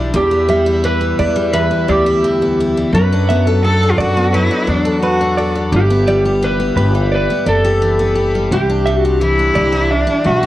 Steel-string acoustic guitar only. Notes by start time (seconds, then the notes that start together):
Already playing: E3 G3 D4 E4
0.14 E2
0.31 B3
0.49 G3
0.66 E4
0.84 E3
1.01 B3
1.19 E4
1.36 G3
1.53 E2
1.71 B3
1.88 G3
2.06 E4
2.24 E3
2.42 B3
2.60 E4
2.77 G3
2.95 F#3
3.12 D4
3.30 B3
3.47 A4
3.64 B3
3.83 D4
4.00 A4
4.17 B3
4.34 F#3
4.51 D4
4.67 B3
4.85 A4
5.02 B3
5.21 D4
5.38 A4
5.55 B3
5.72 G2
5.90 B3
6.07 G3
6.25 G4
6.42 E3
6.60 B3
6.77 G4
6.95 G3
7.30 B3
7.46 G3
7.65 G4
7.82 E3
7.99 B3
8.15 G4
8.35 G3
8.52 C3
8.70 D4
8.87 G3
9.05 G4
9.21 E3
9.39 D4
9.55 G4
9.72 G3
10.07 D4
10.24 G3
10.43 G4